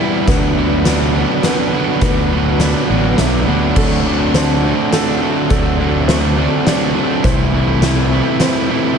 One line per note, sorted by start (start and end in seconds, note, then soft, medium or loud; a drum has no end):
0.00 0.25 E3 medium
0.00 0.25 G3 medium
0.00 0.27 B3 medium
0.00 0.24 E4 medium
0.00 0.26 E4 loud
0.00 3.72 B4 medium
0.00 0.24 D5 medium
0.00 0.28 E5 loud
0.00 0.24 G5 medium
0.26 1.23 D2 loud
0.26 0.55 D3 loud
0.26 0.56 F#3 loud
0.26 0.57 B3 loud
0.26 0.58 D4 loud
0.26 3.72 F#4 medium
0.26 0.57 F#4 loud
0.26 0.86 B4 medium
0.26 7.20 D5 medium
0.26 3.72 B5 medium
0.26 kick loud
0.26 closed hi-hat medium
0.56 0.84 D3 medium
0.56 0.84 F#3 loud
0.56 0.85 B3 loud
0.56 0.87 D4 loud
0.56 0.86 F#4 loud
0.84 1.13 D3 loud
0.84 1.13 F#3 loud
0.84 1.14 B3 loud
0.84 1.16 D4 loud
0.84 1.14 F#4 loud
0.84 1.44 D5 medium
0.84 snare medium
0.84 closed hi-hat medium
1.14 1.42 D3 medium
1.14 1.42 F#3 medium
1.14 1.42 B3 loud
1.14 1.46 D4 medium
1.14 1.43 F#4 loud
1.42 1.72 D3 loud
1.42 1.72 F#3 loud
1.42 1.72 B3 loud
1.42 1.75 D4 loud
1.42 1.72 F#4 loud
1.42 2.01 B4 medium
1.42 snare medium
1.42 closed hi-hat medium
1.72 2.01 D3 medium
1.72 2.01 F#3 medium
1.72 2.01 B3 medium
1.72 2.03 D4 loud
1.72 2.02 F#4 medium
2.01 2.73 D2 loud
2.01 2.30 D3 medium
2.01 2.29 F#3 loud
2.01 2.30 B3 loud
2.01 2.32 D4 loud
2.01 2.31 F#4 loud
2.01 2.60 B4 medium
2.01 kick loud
2.01 closed hi-hat medium
2.30 2.59 D3 medium
2.30 2.59 F#3 medium
2.30 2.59 B3 medium
2.30 2.61 D4 medium
2.30 2.59 F#4 loud
2.59 2.88 D3 loud
2.59 2.88 F#3 loud
2.59 2.88 B3 loud
2.59 2.90 D4 loud
2.59 2.89 F#4 medium
2.59 3.18 D5 medium
2.59 snare medium
2.59 closed hi-hat medium
2.88 3.16 A1 medium
2.88 3.17 D3 medium
2.88 3.17 F#3 loud
2.88 3.18 B3 medium
2.88 3.19 D4 medium
2.88 3.18 F#4 loud
3.18 3.45 B1 medium
3.18 3.47 D3 loud
3.18 3.46 F#3 loud
3.18 3.47 B3 loud
3.18 3.48 D4 medium
3.18 3.47 F#4 loud
3.18 3.76 E5 medium
3.18 snare medium
3.18 closed hi-hat medium
3.47 3.74 D2 medium
3.47 3.76 D3 medium
3.47 3.75 F#3 medium
3.47 3.75 B3 medium
3.47 3.78 D4 loud
3.47 3.75 F#4 medium
3.76 4.71 D2 loud
3.76 4.06 D3 medium
3.76 4.04 F#3 loud
3.76 4.06 A3 loud
3.76 4.06 C4 medium
3.76 4.06 D4 loud
3.76 4.06 F#4 medium
3.76 4.34 A4 loud
3.76 7.21 A4 medium
3.76 7.22 A5 medium
3.76 8.98 C6 medium
3.76 kick loud
3.76 crash loud
4.05 4.35 D3 medium
4.05 4.33 F#3 loud
4.05 4.35 A3 medium
4.05 4.35 C4 medium
4.05 4.35 D4 loud
4.05 4.35 F#4 loud
4.34 4.62 D3 medium
4.34 4.63 F#3 loud
4.34 4.64 A3 loud
4.34 4.65 C4 loud
4.34 4.64 D4 loud
4.34 4.64 F#4 loud
4.34 4.93 C5 medium
4.34 snare medium
4.34 closed hi-hat medium
4.64 4.91 D3 medium
4.64 4.91 F#3 medium
4.64 4.92 A3 medium
4.64 4.93 C4 medium
4.64 4.92 D4 medium
4.64 4.93 F#4 loud
4.92 5.20 D3 loud
4.92 5.21 F#3 medium
4.92 5.22 A3 loud
4.92 5.22 C4 loud
4.92 5.22 D4 loud
4.92 5.22 F#4 loud
4.92 5.49 A4 medium
4.92 snare medium
4.92 closed hi-hat medium
5.21 5.49 D3 medium
5.21 5.49 F#3 medium
5.21 5.50 A3 medium
5.21 5.51 C4 medium
5.21 5.50 D4 loud
5.21 5.50 F#4 medium
5.50 6.46 D2 loud
5.50 5.78 D3 medium
5.50 5.78 F#3 loud
5.50 5.80 A3 loud
5.50 5.80 C4 loud
5.50 5.79 D4 loud
5.50 5.80 F#4 loud
5.50 6.08 A4 loud
5.50 kick loud
5.50 closed hi-hat medium
5.79 6.07 D3 medium
5.79 6.07 F#3 medium
5.79 6.08 A3 loud
5.79 6.09 C4 loud
5.79 6.08 D4 loud
5.79 6.08 F#4 loud
6.08 6.36 D3 loud
6.08 6.36 F#3 loud
6.08 6.37 A3 loud
6.08 6.38 C4 medium
6.08 6.37 D4 loud
6.08 6.38 F#4 loud
6.08 6.66 C5 medium
6.08 snare medium
6.08 closed hi-hat medium
6.37 6.65 D3 medium
6.37 6.65 F#3 medium
6.37 6.67 A3 medium
6.37 6.67 C4 loud
6.37 6.66 D4 loud
6.37 6.67 F#4 loud
6.66 6.94 D3 loud
6.66 6.94 F#3 loud
6.66 6.95 A3 loud
6.66 6.96 C4 loud
6.66 6.95 D4 loud
6.66 6.95 F#4 loud
6.66 7.25 D5 medium
6.66 snare medium
6.66 closed hi-hat medium
6.95 7.22 D3 loud
6.95 7.23 F#3 loud
6.95 7.24 A3 medium
6.95 7.25 C4 loud
6.95 7.23 D4 loud
6.95 7.23 F#4 loud
7.24 8.20 C2 loud
7.24 7.52 C3 medium
7.24 7.52 E3 loud
7.24 7.53 A3 loud
7.24 7.53 C4 loud
7.24 7.54 E4 loud
7.24 8.98 A4 medium
7.24 7.83 C5 loud
7.24 8.98 C5 medium
7.24 8.98 E5 medium
7.24 kick loud
7.24 closed hi-hat medium
7.52 7.81 C3 medium
7.52 7.81 E3 loud
7.52 7.82 A3 medium
7.52 7.82 C4 loud
7.52 7.83 E4 medium
7.81 8.09 C3 loud
7.81 8.11 E3 loud
7.81 8.10 A3 loud
7.81 8.11 C4 loud
7.81 8.12 E4 loud
7.81 8.40 E5 medium
7.81 snare medium
7.81 closed hi-hat medium
8.10 8.39 C3 medium
8.10 8.40 E3 loud
8.10 8.40 A3 loud
8.10 8.40 C4 loud
8.10 8.42 E4 loud
8.40 8.67 C3 loud
8.40 8.69 E3 loud
8.40 8.68 A3 loud
8.40 8.69 C4 loud
8.40 8.70 E4 loud
8.40 8.97 C5 medium
8.40 snare medium
8.40 closed hi-hat medium
8.69 8.97 C3 medium
8.69 8.97 E3 medium
8.69 8.98 A3 medium
8.69 8.98 C4 medium
8.69 8.98 E4 loud